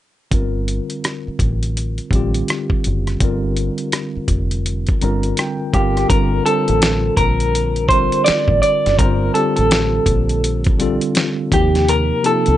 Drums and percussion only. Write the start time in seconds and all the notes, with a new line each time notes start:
0.32 kick, closed hi-hat
0.68 closed hi-hat
0.90 closed hi-hat
1.04 cross-stick, closed hi-hat
1.39 kick, closed hi-hat
1.63 closed hi-hat
1.77 closed hi-hat
1.98 closed hi-hat
2.11 kick, closed hi-hat
2.34 closed hi-hat
2.48 cross-stick, closed hi-hat
2.70 kick
2.84 closed hi-hat
3.07 cross-stick, closed hi-hat
3.20 kick, closed hi-hat
3.57 closed hi-hat
3.78 closed hi-hat
3.92 cross-stick, closed hi-hat
4.28 kick, closed hi-hat
4.51 closed hi-hat
4.66 closed hi-hat
4.87 kick, closed hi-hat
5.01 closed hi-hat
5.23 closed hi-hat
5.37 cross-stick, closed hi-hat
5.74 kick, closed hi-hat
5.97 cross-stick, closed hi-hat
6.10 kick, closed hi-hat
6.46 closed hi-hat
6.68 closed hi-hat
6.82 snare, closed hi-hat
7.17 kick, closed hi-hat
7.40 closed hi-hat
7.55 closed hi-hat
7.76 closed hi-hat
7.89 kick, closed hi-hat
8.12 closed hi-hat
8.26 snare, closed hi-hat
8.48 kick
8.63 closed hi-hat
8.86 snare, closed hi-hat
8.99 kick, closed hi-hat
9.35 closed hi-hat
9.56 closed hi-hat
9.71 snare, closed hi-hat
10.06 kick, closed hi-hat
10.29 closed hi-hat
10.44 closed hi-hat
10.64 kick, closed hi-hat
10.80 closed hi-hat
11.01 closed hi-hat
11.15 snare, closed hi-hat
11.52 kick, closed hi-hat
11.75 snare, closed hi-hat
11.88 closed hi-hat
12.24 closed hi-hat
12.46 closed hi-hat